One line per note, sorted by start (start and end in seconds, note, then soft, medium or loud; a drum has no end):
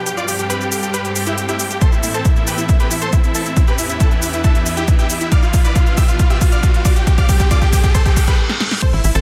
0.00 riser medium
0.06 1.80 G2 medium
0.06 1.80 G3 medium
0.06 3.53 C4 medium
0.06 0.13 G4 medium
0.06 1.80 A4 medium
0.06 1.80 F5 medium
0.06 closed hi-hat medium
0.06 shaker soft
0.17 0.24 F4 medium
0.17 0.24 D5 medium
0.17 shaker soft
0.28 0.35 G4 medium
0.28 open hi-hat loud
0.28 shaker medium
0.39 0.46 G4 medium
0.39 closed hi-hat soft
0.39 shaker soft
0.50 0.56 G4 medium
0.50 0.56 B4 medium
0.50 closed hi-hat medium
0.50 shaker soft
0.61 0.68 G4 medium
0.61 shaker soft
0.72 0.78 G4 medium
0.72 open hi-hat medium
0.72 shaker medium
0.83 0.89 G4 medium
0.83 closed hi-hat soft
0.83 shaker soft
0.94 1.00 G4 medium
0.94 1.00 B4 loud
0.94 closed hi-hat medium
0.94 shaker soft
1.05 1.11 G4 medium
1.05 closed hi-hat soft
1.05 shaker soft
1.16 1.22 G4 medium
1.16 open hi-hat loud
1.16 shaker medium
1.27 1.33 E4 medium
1.27 1.33 G4 medium
1.27 closed hi-hat soft
1.27 shaker soft
1.38 1.44 G4 medium
1.38 closed hi-hat medium
1.38 shaker soft
1.49 1.55 E4 medium
1.49 1.55 G4 medium
1.49 closed hi-hat soft
1.49 shaker soft
1.60 1.66 G4 medium
1.60 open hi-hat medium
1.60 shaker medium
1.71 1.77 G4 medium
1.71 closed hi-hat soft
1.71 shaker soft
1.81 3.55 A2 medium
1.81 5.28 E3 medium
1.81 3.55 A4 medium
1.81 1.88 A4 medium
1.81 1.88 C5 loud
1.81 3.55 E5 medium
1.81 kick loud
1.81 closed hi-hat medium
1.81 shaker soft
1.92 1.99 E4 medium
1.92 shaker soft
2.03 2.10 E4 medium
2.03 open hi-hat loud
2.03 shaker medium
2.14 2.21 C4 medium
2.14 2.21 A4 medium
2.14 closed hi-hat soft
2.14 shaker soft
2.25 2.32 E4 medium
2.25 kick loud
2.25 closed hi-hat medium
2.25 shaker soft
2.36 2.43 E4 medium
2.36 shaker soft
2.47 2.54 G4 medium
2.47 2.54 B4 medium
2.47 open hi-hat medium
2.47 shaker medium
2.58 2.65 E4 medium
2.58 closed hi-hat medium
2.58 shaker soft
2.69 2.76 E4 medium
2.69 kick loud
2.69 closed hi-hat medium
2.69 shaker soft
2.80 2.87 G4 medium
2.80 2.87 B4 medium
2.80 closed hi-hat soft
2.80 shaker soft
2.91 2.98 E4 medium
2.91 open hi-hat loud
2.91 shaker medium
3.02 3.08 A4 medium
3.02 3.08 C5 loud
3.02 closed hi-hat soft
3.02 shaker soft
3.13 3.19 E4 medium
3.13 kick loud
3.13 closed hi-hat medium
3.13 shaker soft
3.24 3.30 E4 medium
3.24 closed hi-hat soft
3.24 shaker soft
3.35 3.41 E4 medium
3.35 3.41 A4 loud
3.35 open hi-hat medium
3.35 shaker medium
3.46 3.52 E4 medium
3.46 closed hi-hat soft
3.46 shaker soft
3.57 5.30 E2 medium
3.57 5.30 B3 medium
3.57 3.63 E4 medium
3.57 5.30 G4 medium
3.57 5.30 B4 medium
3.57 kick loud
3.57 closed hi-hat medium
3.57 shaker soft
3.68 3.74 G4 medium
3.68 3.74 B4 loud
3.68 shaker soft
3.78 3.85 E4 medium
3.78 open hi-hat loud
3.78 shaker medium
3.89 3.96 E4 medium
3.89 closed hi-hat medium
3.89 shaker soft
4.00 4.07 E4 medium
4.00 4.07 A4 loud
4.00 kick loud
4.00 closed hi-hat medium
4.00 shaker soft
4.11 4.18 E4 medium
4.11 shaker soft
4.22 4.29 E4 medium
4.22 open hi-hat medium
4.22 shaker medium
4.33 4.40 E4 medium
4.33 closed hi-hat medium
4.33 shaker soft
4.44 4.51 E4 medium
4.44 4.51 A4 medium
4.44 kick loud
4.44 closed hi-hat medium
4.44 shaker soft
4.55 4.62 E4 medium
4.55 closed hi-hat soft
4.55 shaker soft
4.66 4.73 E4 medium
4.66 open hi-hat medium
4.66 shaker medium
4.77 4.84 E4 medium
4.77 4.84 G4 medium
4.77 closed hi-hat medium
4.77 shaker soft
4.88 4.95 E4 medium
4.88 kick loud
4.88 closed hi-hat medium
4.88 shaker soft
4.99 5.06 E4 medium
4.99 5.06 G4 medium
4.99 closed hi-hat soft
4.99 shaker soft
5.10 5.17 E4 medium
5.10 open hi-hat medium
5.10 shaker medium
5.21 5.27 E4 medium
5.21 closed hi-hat soft
5.21 shaker soft
5.32 7.05 B2 medium
5.32 7.05 F3 medium
5.32 7.05 D4 medium
5.32 7.05 B4 medium
5.32 5.38 D5 medium
5.32 5.38 F5 loud
5.32 8.35 F5 medium
5.32 kick loud
5.32 closed hi-hat medium
5.32 shaker soft
5.43 5.49 F4 medium
5.43 shaker soft
5.54 5.60 F4 medium
5.54 kick loud
5.54 open hi-hat loud
5.54 shaker medium
5.65 5.71 B4 medium
5.65 5.71 D5 medium
5.65 closed hi-hat medium
5.65 shaker soft
5.76 5.82 F4 medium
5.76 kick loud
5.76 closed hi-hat medium
5.76 shaker soft
5.87 5.93 F4 medium
5.87 shaker soft
5.97 6.04 G4 medium
5.97 6.04 E5 loud
5.97 kick loud
5.97 open hi-hat medium
5.97 shaker medium
6.08 6.15 F4 medium
6.08 closed hi-hat medium
6.08 shaker soft
6.19 6.26 F4 medium
6.19 kick loud
6.19 closed hi-hat medium
6.19 shaker soft
6.30 6.37 G4 medium
6.30 6.37 E5 medium
6.30 closed hi-hat soft
6.30 shaker soft
6.41 6.48 F4 medium
6.41 kick loud
6.41 open hi-hat loud
6.41 shaker medium
6.52 6.59 D5 medium
6.52 6.59 F5 loud
6.52 closed hi-hat medium
6.52 shaker soft
6.63 6.70 F4 medium
6.63 kick loud
6.63 closed hi-hat medium
6.63 shaker soft
6.74 6.81 F4 medium
6.74 closed hi-hat soft
6.74 shaker soft
6.85 6.92 F4 medium
6.85 6.92 D5 loud
6.85 kick loud
6.85 open hi-hat medium
6.85 shaker medium
6.96 7.03 G4 medium
6.96 closed hi-hat medium
6.96 shaker soft
7.07 8.37 G2 medium
7.07 8.37 G3 medium
7.07 8.37 C4 medium
7.07 7.14 G4 medium
7.07 8.37 A4 medium
7.07 kick loud
7.07 closed hi-hat medium
7.07 shaker soft
7.18 7.25 D5 medium
7.18 7.25 F5 loud
7.18 kick medium
7.18 closed hi-hat soft
7.18 shaker soft
7.29 7.36 G4 medium
7.29 kick loud
7.29 open hi-hat loud
7.29 shaker medium
7.40 7.47 G4 medium
7.40 kick medium
7.40 closed hi-hat medium
7.40 shaker soft
7.51 7.57 F4 medium
7.51 7.57 D5 loud
7.51 kick loud
7.51 closed hi-hat medium
7.51 shaker soft
7.62 7.68 G4 medium
7.62 kick medium
7.62 shaker soft
7.73 7.79 G4 medium
7.73 kick loud
7.73 open hi-hat medium
7.73 shaker medium
7.84 7.90 G4 medium
7.84 kick medium
7.84 closed hi-hat medium
7.84 shaker soft
7.95 8.01 A4 medium
7.95 8.01 C5 medium
7.95 kick loud
7.95 closed hi-hat medium
7.95 reverse cymbal medium
7.95 shaker soft
8.06 8.12 G4 medium
8.06 kick medium
8.06 closed hi-hat soft
8.06 shaker soft
8.17 8.23 G4 medium
8.17 kick loud
8.17 open hi-hat loud
8.17 shaker medium
8.28 8.34 G4 medium
8.28 8.34 B4 loud
8.28 kick medium
8.28 closed hi-hat medium
8.28 shaker soft
8.49 snare medium
8.60 snare medium
8.71 snare medium
8.82 9.21 E3 medium
8.82 9.21 A3 medium
8.82 9.21 C4 medium
8.82 8.89 A4 medium
8.82 8.89 C5 loud
8.82 kick loud
8.82 closed hi-hat medium
8.82 crash loud
8.82 shaker soft
8.93 9.00 A1 medium
8.93 9.00 E4 medium
8.93 shaker soft
9.04 9.11 A1 loud
9.04 9.11 E4 medium
9.04 open hi-hat loud
9.04 shaker medium
9.15 9.21 A1 loud
9.15 9.21 C4 medium
9.15 9.21 A4 medium
9.15 closed hi-hat medium
9.15 shaker soft